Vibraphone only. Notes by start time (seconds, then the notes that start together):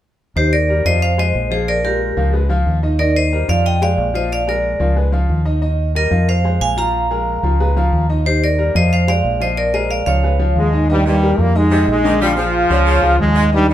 0.37 G4 C5
0.53 A#4 D5
0.86 C5 D#5
1.02 C5 F5
1.19 C5 D#5
1.52 G#4 C5
1.68 A#4 D5
1.85 G4 A#4
2.99 A#4 D5
3.16 C5 D#5
3.49 D5 F5
3.66 D#5 G5
3.82 D5 F5
4.15 C5 D#5
4.32 D5 F5
4.49 A#4 D5
5.96 A#4 D#5
6.29 C5 F5
6.61 F5 G#5
6.78 F5 A#5
8.26 G4 C5
8.44 A#4 D5
8.76 C5 D#5
8.93 C5 F5
9.08 D5 F5
9.42 C5 D#5
9.57 A#4 D5
9.74 C5 D#5
9.91 D5 F5
10.06 C#5 F5